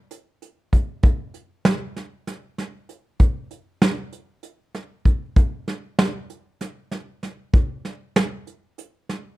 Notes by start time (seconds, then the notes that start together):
0.11 closed hi-hat
0.42 closed hi-hat
0.73 kick, closed hi-hat
1.03 kick, closed hi-hat
1.34 closed hi-hat
1.65 snare, closed hi-hat
1.97 snare, closed hi-hat
2.27 snare, closed hi-hat
2.58 snare, closed hi-hat
2.89 closed hi-hat
3.20 kick, closed hi-hat
3.51 closed hi-hat
3.82 snare, closed hi-hat
4.12 closed hi-hat
4.43 closed hi-hat
4.74 snare, closed hi-hat
5.05 kick, closed hi-hat
5.36 kick, closed hi-hat
5.68 snare, closed hi-hat
5.99 snare, closed hi-hat
6.30 closed hi-hat
6.61 snare, closed hi-hat
6.91 snare, closed hi-hat
7.23 snare, closed hi-hat
7.53 kick, closed hi-hat
7.85 snare, closed hi-hat
8.16 snare, closed hi-hat
8.47 closed hi-hat
8.78 closed hi-hat
9.09 snare, closed hi-hat